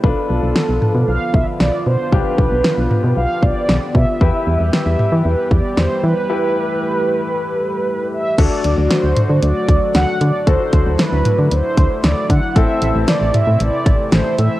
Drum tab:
CC |--------|--------|--------|--------|
HH |--------|--------|--------|--------|
SD |--o---o-|--o---o-|--o---o-|--------|
T2 |---o----|---o----|---o----|--------|
BD |o----o--|oo---o-o|o----o--|--------|

CC |x-------|--------|--------|
HH |xxxxxxxx|xxxxxxxx|xxxxxxxx|
SD |--o---o-|--o---o-|--o---o-|
T2 |---o----|---o----|---o----|
BD |o----o--|oo---o-o|o----o--|